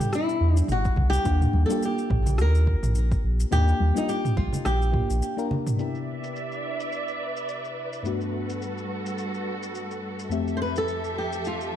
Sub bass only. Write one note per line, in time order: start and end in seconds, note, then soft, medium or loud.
0.41 0.62 E2 medium
0.69 0.90 G1 medium
0.97 1.18 C2 medium
1.25 1.47 D#2 loud
1.53 1.65 D#2 medium
2.10 2.39 A#1 medium
2.38 2.75 D#2 loud
2.83 3.18 A#1 medium
3.24 3.45 A#1 medium
3.52 3.73 D#2 loud
3.81 3.92 D#2 medium
4.37 4.48 A#1 medium
4.66 5.02 A#1 medium
5.10 5.22 A#1 medium